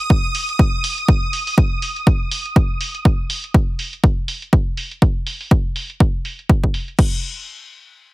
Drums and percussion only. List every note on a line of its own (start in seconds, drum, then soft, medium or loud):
0.10 kick loud
0.10 closed hi-hat soft
0.35 open hi-hat loud
0.49 closed hi-hat medium
0.59 kick loud
0.59 closed hi-hat soft
0.84 open hi-hat loud
0.98 closed hi-hat medium
1.08 kick loud
1.08 closed hi-hat medium
1.33 open hi-hat loud
1.47 open hi-hat medium
1.58 kick loud
1.82 open hi-hat loud
1.96 closed hi-hat medium
2.07 kick loud
2.07 closed hi-hat medium
2.31 open hi-hat loud
2.46 closed hi-hat medium
2.56 kick loud
2.56 closed hi-hat soft
2.81 open hi-hat loud
2.95 closed hi-hat medium
3.05 kick loud
3.05 closed hi-hat medium
3.30 open hi-hat loud
3.44 closed hi-hat medium
3.54 kick loud
3.54 closed hi-hat medium
3.79 open hi-hat medium
3.93 closed hi-hat medium
4.04 kick loud
4.04 closed hi-hat medium
4.28 open hi-hat medium
4.42 closed hi-hat medium
4.53 kick loud
4.53 closed hi-hat medium
4.77 open hi-hat medium
4.91 closed hi-hat medium
5.02 kick loud
5.02 closed hi-hat medium
5.27 open hi-hat medium
5.41 open hi-hat medium
5.51 kick loud
5.51 closed hi-hat medium
5.76 open hi-hat medium
5.90 closed hi-hat medium
6.00 kick loud
6.00 closed hi-hat medium
6.25 open hi-hat loud
6.39 closed hi-hat medium
6.49 kick loud
6.49 closed hi-hat medium
6.64 kick medium
6.74 open hi-hat medium
6.88 closed hi-hat medium
6.99 kick loud
6.99 crash medium